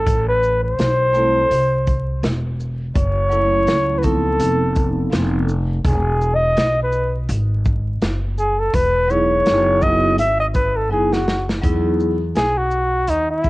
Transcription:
0.00 0.24 A4 loud
0.06 0.75 A1 loud
0.06 kick loud
0.06 closed hi-hat medium
0.28 0.62 B4 loud
0.43 shaker soft
0.64 2.41 C5 loud
0.79 1.48 B1 medium
0.79 snare loud
0.79 closed hi-hat medium
1.13 1.41 G3 medium
1.13 1.41 A3 medium
1.13 1.42 C4 medium
1.13 1.42 E4 medium
1.13 1.43 A4 medium
1.13 shaker medium
1.50 2.19 C2 medium
1.50 closed hi-hat medium
1.87 kick medium
1.87 closed hi-hat soft
1.87 shaker soft
2.23 2.92 E1 medium
2.23 snare loud
2.23 closed hi-hat medium
2.60 shaker medium
2.95 3.64 F#1 medium
2.95 4.00 C#5 loud
2.95 kick loud
2.95 closed hi-hat medium
3.30 4.33 F#3 medium
3.30 4.33 A3 medium
3.30 4.34 C#4 medium
3.30 4.34 E4 medium
3.30 4.04 A4 medium
3.30 shaker soft
3.67 4.37 C#2 loud
3.67 snare loud
3.67 closed hi-hat medium
3.98 5.06 F3 medium
3.98 4.06 B4 medium
4.03 5.06 B3 medium
4.03 5.06 C4 medium
4.03 5.07 D#4 medium
4.03 5.13 A4 loud
4.03 5.07 A4 medium
4.03 kick medium
4.03 closed hi-hat soft
4.03 shaker medium
4.40 5.09 F1 loud
4.40 closed hi-hat medium
4.76 kick medium
4.76 closed hi-hat soft
4.76 shaker soft
5.10 5.81 F1 medium
5.10 5.38 F3 medium
5.10 5.39 B3 medium
5.10 5.39 C4 medium
5.10 5.40 D#4 medium
5.10 5.40 A4 medium
5.10 snare loud
5.10 closed hi-hat medium
5.49 shaker medium
5.85 6.53 E1 loud
5.85 6.36 G#4 medium
5.85 kick loud
5.85 closed hi-hat medium
6.21 shaker soft
6.35 6.82 D#5 loud
6.57 7.26 B1 medium
6.57 snare loud
6.57 closed hi-hat medium
6.83 7.16 B4 medium
6.92 shaker medium
7.29 7.98 G#1 loud
7.29 closed hi-hat medium
7.65 kick medium
7.65 shaker soft
8.01 8.70 F#1 medium
8.01 snare loud
8.01 closed hi-hat medium
8.38 8.61 G#4 medium
8.38 shaker medium
8.59 8.76 A4 medium
8.73 9.42 E1 loud
8.73 9.12 B4 loud
8.73 kick loud
8.73 closed hi-hat medium
9.08 9.80 F#3 medium
9.08 9.80 B3 medium
9.08 9.81 D#4 medium
9.08 9.82 E4 medium
9.08 10.13 G#4 medium
9.08 9.84 C#5 loud
9.08 shaker soft
9.46 10.18 F#1 medium
9.46 snare loud
9.46 closed hi-hat medium
9.81 10.09 F#3 medium
9.81 10.09 B3 medium
9.81 10.09 D#4 medium
9.81 10.10 E4 medium
9.81 10.10 F#4 medium
9.81 10.19 D#5 loud
9.81 kick medium
9.81 shaker medium
10.18 10.91 G#1 medium
10.18 10.38 E5 loud
10.18 closed hi-hat medium
10.40 10.47 D#5 medium
10.55 10.78 B4 loud
10.55 kick medium
10.55 closed hi-hat soft
10.55 shaker soft
10.76 10.91 A4 medium
10.90 11.60 F#1 medium
10.90 11.17 F#3 medium
10.90 11.18 B3 medium
10.90 11.18 D#4 medium
10.90 11.19 E4 medium
10.90 11.14 G#4 medium
10.90 11.19 G#4 medium
11.13 11.49 F#4 medium
11.13 snare medium
11.28 snare medium
11.49 snare medium
11.62 12.32 E2 loud
11.62 12.15 F#3 medium
11.62 12.16 B3 medium
11.62 12.16 D#4 medium
11.62 12.16 E4 medium
11.62 12.17 G#4 loud
11.62 kick loud
11.62 closed hi-hat medium
12.00 shaker soft
12.35 13.04 B1 medium
12.35 12.59 G#4 medium
12.35 snare loud
12.35 closed hi-hat medium
12.57 13.11 F#4 loud
12.71 shaker soft
13.07 13.50 D#2 medium
13.07 13.29 D#4 medium
13.07 closed hi-hat medium
13.30 13.50 E4 medium
13.42 13.50 F#3 medium
13.42 13.50 B3 medium
13.42 13.50 D#4 medium
13.42 13.50 E4 medium
13.42 13.50 G#4 medium
13.42 kick medium
13.42 shaker soft

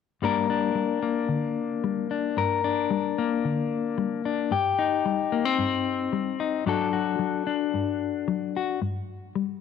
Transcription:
0.22 0.71 G2 medium
0.22 0.75 G3 medium
0.22 1.02 A#3 medium
0.22 0.49 D4 soft
0.22 2.35 A#4 medium
0.50 2.10 D4 medium
0.75 1.24 G3 medium
1.02 3.17 A#3 soft
1.29 1.78 D3 medium
1.84 2.32 G3 medium
2.11 2.63 D4 soft
2.37 2.86 G2 medium
2.37 4.50 A#4 medium
2.64 4.24 D4 medium
2.90 3.39 G3 medium
3.18 4.53 A#3 medium
3.45 3.93 D3 medium
3.98 4.47 G3 medium
4.25 4.52 D4 soft
4.51 5.00 G2 medium
4.51 6.67 G4 medium
4.79 6.39 D#4 medium
5.05 5.54 G3 medium
5.32 5.45 A#3 medium
5.45 6.67 C4 soft
5.58 6.08 G2 medium
6.13 6.62 G3 medium
6.40 6.64 D#4 soft
6.66 7.15 G2 medium
6.66 7.18 F#3 medium
6.66 7.46 D4 medium
6.66 6.92 F#4 medium
6.66 8.79 A4 medium
6.93 8.54 F#4 medium
7.19 7.68 F#3 medium
7.47 8.78 D4 medium
7.74 8.23 G2 medium
8.28 8.76 F#3 medium
8.57 8.79 F#4 medium
8.82 9.30 G2 medium
9.35 9.61 G3 medium

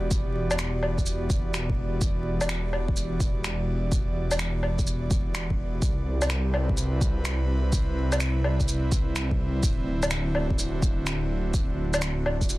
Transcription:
0.00 5.81 E1 medium
0.00 5.83 E3 medium
0.00 5.83 B3 medium
0.00 7.38 F#4 medium
0.00 6.80 G4 medium
0.00 12.58 D5 medium
0.11 kick loud
0.11 shaker medium
0.51 low woodblock medium
0.51 shaker medium
0.59 finger snap loud
0.59 shaker medium
0.83 low woodblock soft
0.98 kick medium
0.98 shaker soft
1.06 shaker medium
1.30 kick loud
1.30 shaker medium
1.54 finger snap loud
1.54 shaker medium
1.70 kick medium
2.01 kick loud
2.01 shaker medium
2.41 low woodblock medium
2.41 shaker medium
2.49 finger snap loud
2.49 shaker medium
2.73 low woodblock soft
2.88 kick medium
2.97 shaker medium
3.20 kick loud
3.20 shaker medium
3.44 finger snap loud
3.44 shaker medium
3.92 kick loud
3.92 shaker medium
4.31 low woodblock medium
4.31 shaker medium
4.39 finger snap loud
4.39 shaker medium
4.63 low woodblock soft
4.79 kick medium
4.79 shaker soft
4.87 shaker medium
5.11 kick loud
5.11 shaker medium
5.35 finger snap medium
5.35 shaker soft
5.50 kick medium
5.82 9.62 C2 medium
5.82 9.63 C3 medium
5.82 kick loud
5.82 shaker medium
5.88 12.58 C4 medium
5.98 10.57 B4 medium
6.10 12.58 E4 medium
6.22 low woodblock medium
6.22 shaker medium
6.30 finger snap loud
6.30 shaker soft
6.54 low woodblock soft
6.69 kick medium
6.77 shaker medium
7.01 kick loud
7.01 shaker soft
7.25 finger snap loud
7.25 shaker soft
7.73 kick loud
7.73 shaker medium
8.12 low woodblock medium
8.12 shaker medium
8.20 finger snap loud
8.20 shaker soft
8.44 low woodblock soft
8.60 kick medium
8.60 shaker soft
8.68 shaker medium
8.92 kick loud
8.92 shaker soft
9.16 finger snap medium
9.16 shaker soft
9.31 kick medium
9.63 12.58 D1 medium
9.63 12.58 D3 medium
9.63 kick loud
9.63 shaker medium
9.94 12.58 F#4 medium
10.03 low woodblock medium
10.03 shaker medium
10.11 finger snap medium
10.11 shaker medium
10.35 low woodblock soft
10.50 kick medium
10.59 shaker medium
10.82 kick loud
10.82 shaker medium
11.07 finger snap medium
11.07 shaker soft
11.54 kick loud
11.54 shaker medium
11.94 low woodblock medium
11.94 shaker medium
12.02 finger snap loud
12.02 shaker medium
12.26 low woodblock soft
12.41 kick medium
12.41 shaker soft
12.49 shaker medium

